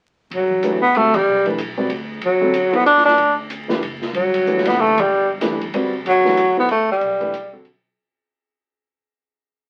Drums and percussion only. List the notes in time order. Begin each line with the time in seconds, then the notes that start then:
0.31 ride
0.51 kick
0.63 hi-hat pedal, ride
0.95 ride
1.14 kick, ride
1.46 kick, ride
1.58 hi-hat pedal, ride
1.90 ride
2.21 ride
2.54 hi-hat pedal, ride
2.73 ride
2.86 ride
2.97 snare
3.08 snare
3.18 ride
3.50 hi-hat pedal, ride
3.69 snare
3.83 ride
4.02 snare
4.14 ride
4.34 ride
4.47 hi-hat pedal
4.58 snare
4.65 snare, ride
4.98 kick, ride
5.41 snare, hi-hat pedal, ride
5.61 kick, ride
5.74 ride
6.06 ride
6.25 snare
6.37 hi-hat pedal, ride
6.69 ride
7.01 ride
7.21 ride
7.34 hi-hat pedal, ride
7.65 ride